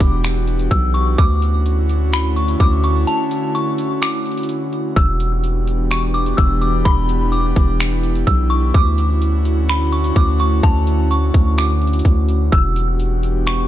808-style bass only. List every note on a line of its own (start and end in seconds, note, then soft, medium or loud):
0.00 0.68 E1 loud
0.71 1.16 B1 loud
1.18 2.56 D2 loud
2.60 3.05 D2 loud
4.96 6.34 E1 loud
6.38 6.83 E1 loud
6.85 7.53 E1 loud
7.56 8.24 E1 loud
8.27 8.72 B1 loud
8.74 10.12 D2 loud
10.16 10.61 D2 loud
10.63 11.31 D2 loud
11.34 12.02 D2 loud
12.05 12.50 D2 loud
12.52 13.68 E1 loud